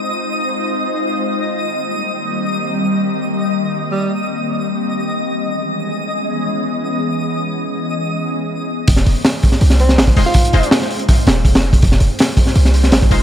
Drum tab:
HH |----------------|----------------|----------------|----------------|
SD |----------------|----------------|----------------|----------------|
BD |----------------|----------------|----------------|----------------|

HH |----------------|----------------|o-o-o-o-o-o-o-o-|oxoxo-oxo-o-oo-o|
SD |----------------|----------------|-o--o--o-o-oo---|----oo----o--o--|
BD |----------------|----------------|o-----o------o--|o-------o---o--o|

HH |o-o-o-o-o-o-o-o-|
SD |-o--o--o-o-oo---|
BD |o-----o------o--|